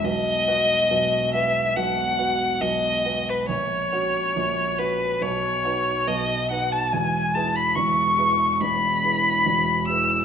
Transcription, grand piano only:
\new Staff \with { instrumentName = "Grand piano" } { \time 4/4 \key e \major \tempo 4 = 70 <b,, b,>8 <b fis' b'>8 <b,, b,>8 <b fis' b'>8 <b,, b,>8 <b fis' b'>8 <b,, b,>8 <b fis' b'>8 | <ais,, ais,>8 <cis' fis'>8 <ais,, ais,>8 <cis' fis'>8 <b,, b,>8 <dis' fis' b'>8 <b,, b,>8 <dis' fis' b'>8 | <e,, e,>8 <e' gis' b'>8 <e,, e,>8 <e' gis' b'>8 <e,, e,>8 <e' gis' b'>8 <e,, e,>8 <e' gis' b'>8 | }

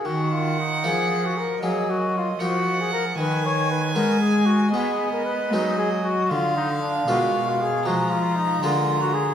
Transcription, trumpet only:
\new Staff \with { instrumentName = "Trumpet" } { \time 12/8 \key ees \minor \tempo 4. = 77 ges'8 f'8 ees'8 aes'8. ges'16 bes'8 aes'8 ges'8 f'8 ges'8. aes'16 bes'8 | ces''8 des''8 ces''8 bes'8 aes'8 ges'8 aes'8. bes'16 ces''8 ees'8 aes'8 ges'8 | f'8 ees'8 d'8 ges'8. f'16 aes'8 ges'8 f'8 ees'8 f'8. ges'16 aes'8 | }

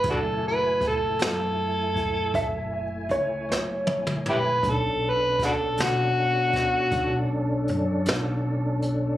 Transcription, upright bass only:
\new Staff \with { instrumentName = "Upright bass" } { \clef bass \time 12/8 \key fis \minor \tempo 4. = 52 fis,,4. fis,4. fis,,4 cis,8 fis,,4. | b,,4. b,4. b,,4 fis,8 b,,4. | }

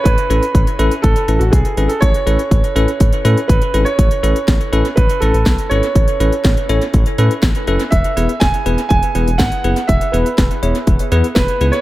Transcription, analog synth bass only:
\new Staff \with { instrumentName = "Analog synth bass" } { \clef bass \time 4/4 \key a \major \tempo 4 = 122 a,,16 r16 a,,16 r16 a,,16 r16 a,,16 r16 a,,16 r16 a,,16 a,,16 b,,16 r16 gis,,16 r16 | a,,16 r16 a,,16 r16 a,,16 r16 a,,16 r16 a,,16 r16 a,16 r16 a,,16 r16 gis,,16 r16 | a,,16 r16 a,,16 r16 a,,16 r16 a,,16 r16 a,,16 r16 a,,16 a,,16 b,,16 r16 gis,,16 r16 | a,,16 r16 a,,16 r16 a,,16 r16 a,,16 r16 a,,16 r16 a,16 r16 a,,16 r16 fis,,16 r16 |
e,,16 r16 e,,16 r16 e,,16 r16 e,,16 r16 e,,16 r16 e,,16 e,,16 gis,,16 r16 fis,,16 r16 | e,,16 r16 e,,16 r16 e,,16 r16 e,,16 r16 e,,16 r16 e,16 r16 e,,16 r16 cis,16 r16 | }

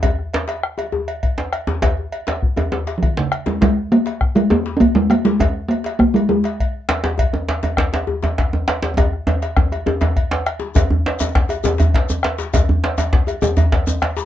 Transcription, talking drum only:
\new Staff \with { instrumentName = "Talking drum" } { \clef bass \time 12/8 \key aes \mixolydian \tempo 4. = 134 r1. | r2. r8. r32 f32 ees8 des4 aes8 | aes4 bes4. aes8 bes8.~ bes32 des'32 bes8 aes8 bes8 aes8~ | aes4 bes4 bes8 aes8 aes2~ aes8 r8 |
r1. | r1. | r1. | r1. | }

